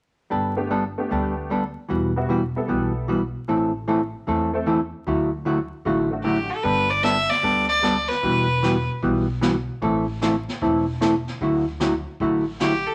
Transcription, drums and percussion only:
6.65 brush sweep, kick
7.04 snare, hi-hat pedal
7.31 snare
7.44 brush sweep, kick
7.84 snare, hi-hat pedal
8.10 snare
8.23 brush sweep, kick
8.63 snare, hi-hat pedal
9.03 brush sweep, kick
9.42 snare, hi-hat pedal
9.82 brush sweep, kick
10.22 snare, hi-hat pedal
10.49 snare
10.62 brush sweep, kick
11.02 snare, hi-hat pedal
11.28 snare
11.41 brush sweep, kick
11.80 snare, hi-hat pedal
12.20 brush sweep, kick
12.60 snare, hi-hat pedal

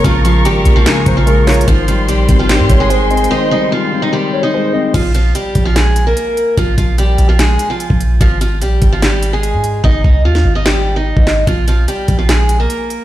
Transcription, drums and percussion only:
0.04 kick, closed hi-hat
0.25 closed hi-hat
0.45 closed hi-hat
0.65 closed hi-hat
0.86 snare, clap, closed hi-hat
1.06 kick, closed hi-hat
1.27 closed hi-hat
1.47 snare, clap, closed hi-hat, open hi-hat
1.54 closed hi-hat
1.61 closed hi-hat
1.68 kick, closed hi-hat
1.88 closed hi-hat
2.08 closed hi-hat
2.29 kick, closed hi-hat
2.49 snare, clap, closed hi-hat
2.69 kick, closed hi-hat
2.90 closed hi-hat
3.11 closed hi-hat
3.17 closed hi-hat
3.24 closed hi-hat
4.94 kick, closed hi-hat, crash
5.15 closed hi-hat
5.35 closed hi-hat
5.55 kick, closed hi-hat
5.76 snare, clap, closed hi-hat
5.96 closed hi-hat
6.17 closed hi-hat
6.37 closed hi-hat
6.57 kick, closed hi-hat
6.78 kick, closed hi-hat
6.98 closed hi-hat
7.18 closed hi-hat
7.39 snare, clap, closed hi-hat
7.59 closed hi-hat
7.80 closed hi-hat
7.90 kick
8.01 closed hi-hat
8.21 kick, closed hi-hat
8.41 closed hi-hat
8.62 closed hi-hat
8.82 kick, closed hi-hat
9.02 snare, clap, closed hi-hat
9.23 closed hi-hat
9.43 closed hi-hat
9.64 closed hi-hat
9.84 kick
10.04 kick
10.35 snare
10.66 snare, clap
11.17 kick
11.27 snare, clap
11.47 kick, closed hi-hat
11.68 closed hi-hat
11.88 closed hi-hat
12.08 kick, closed hi-hat
12.29 snare, clap, closed hi-hat
12.49 closed hi-hat
12.70 closed hi-hat
12.90 closed hi-hat

